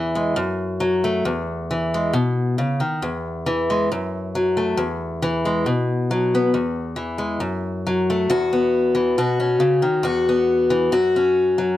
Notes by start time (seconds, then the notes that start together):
Already playing: E2 E3
0.15 G#3
0.36 F#2
0.80 F#3
1.04 A3
1.25 E2
1.71 E3
1.94 G#3
2.13 B2
2.58 C#3
2.80 D#3
3.02 E2
3.46 E3
3.70 G#3
3.92 F#2
4.35 F#3
4.57 A3
4.77 E2
5.22 E3
5.45 G#3
5.66 B2
6.11 F#3
6.35 B3
6.54 E2
6.96 E3
7.18 G#3
7.40 F#2
7.87 F#3
8.10 A3
8.30 E2 F#4
8.53 B3
8.95 E3
9.18 B2 F#4
9.40 C#4
9.60 C#3
9.82 D#3
10.03 E2 F#4
10.29 B3
10.70 E3
10.92 F#2 F#4
11.16 C#4
11.58 F#3